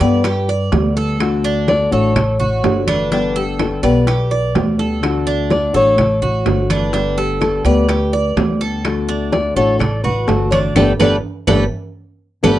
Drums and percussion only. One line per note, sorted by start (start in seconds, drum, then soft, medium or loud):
0.00 high bongo soft
0.00 high conga soft
0.00 high timbale medium
0.24 high bongo medium
0.24 high conga soft
0.24 high timbale medium
0.24 claves medium
0.48 high bongo soft
0.48 high conga soft
0.72 high bongo medium
0.72 low bongo medium
0.72 high conga medium
0.72 high timbale medium
0.72 low timbale medium
0.96 high bongo soft
0.96 high conga soft
1.20 high bongo medium
1.20 high conga soft
1.20 high timbale medium
1.20 claves medium
1.44 high conga soft
1.68 high bongo medium
1.68 high conga loud
1.68 high timbale medium
1.68 low timbale medium
1.92 high conga soft
2.16 high bongo medium
2.16 high conga soft
2.16 low conga medium
2.16 high timbale loud
2.16 claves medium
2.40 high conga soft
2.40 low conga medium
2.64 high bongo medium
2.64 low bongo medium
2.64 high conga soft
2.64 high timbale medium
2.64 low timbale medium
2.87 high conga medium
2.87 high timbale medium
2.87 claves medium
3.11 high bongo medium
3.11 high conga soft
3.35 high conga soft
3.59 high bongo medium
3.59 high conga medium
3.59 high timbale medium
3.59 low timbale medium
3.59 claves medium
3.84 high bongo soft
3.84 high conga soft
3.84 high timbale medium
4.07 high bongo medium
4.07 high conga soft
4.07 high timbale medium
4.07 claves medium
4.31 high bongo soft
4.31 high conga soft
4.55 high bongo medium
4.55 low bongo medium
4.55 high conga medium
4.55 high timbale medium
4.55 low timbale medium
4.79 high bongo soft
4.79 high conga soft
5.03 high bongo medium
5.03 high conga soft
5.03 high timbale medium
5.03 claves medium
5.27 high conga soft
5.50 high bongo medium
5.50 high conga loud
5.50 high timbale medium
5.50 low timbale medium
5.75 high conga soft
5.98 high bongo medium
5.98 high conga soft
5.98 low conga medium
5.98 high timbale medium
5.98 claves medium
6.23 high conga soft
6.23 low conga medium
6.46 high bongo medium
6.46 low bongo medium
6.46 high conga soft
6.46 high timbale medium
6.46 low timbale medium
6.70 high conga medium
6.70 high timbale medium
6.70 claves medium
6.93 high bongo medium
6.93 high conga soft
7.18 high conga soft
7.41 high bongo medium
7.41 high conga medium
7.41 high timbale medium
7.41 low timbale medium
7.41 claves medium
7.65 high bongo soft
7.65 high conga soft
7.65 high timbale medium
7.89 high bongo medium
7.89 high conga soft
7.89 high timbale medium
7.89 claves medium
8.13 high bongo soft
8.13 high conga soft
8.37 high bongo medium
8.37 low bongo medium
8.37 high conga medium
8.37 high timbale medium
8.37 low timbale medium
8.61 high bongo soft
8.85 high bongo medium
8.85 high conga soft
8.85 high timbale medium
8.85 claves medium
9.09 high conga soft
9.32 high bongo medium
9.32 high conga loud
9.32 high timbale medium
9.32 low timbale medium
9.56 high conga soft
9.80 high bongo medium
9.80 high conga soft
9.80 low conga medium
9.80 high timbale medium
9.80 claves medium
10.05 high conga soft
10.05 low conga medium
10.28 high bongo medium
10.28 low bongo medium
10.28 high conga soft
10.28 high timbale medium
10.28 low timbale medium
10.52 high conga medium
10.52 high timbale medium
10.52 claves medium
10.76 high bongo medium
10.76 high conga loud
10.76 high timbale loud
10.76 claves loud
11.00 high bongo medium
11.00 high conga loud
11.00 high timbale loud
11.00 claves loud
11.47 high bongo loud
11.47 high conga loud
11.47 high timbale loud
11.47 claves loud
12.43 high bongo loud
12.43 high conga medium
12.43 high timbale medium
12.43 claves loud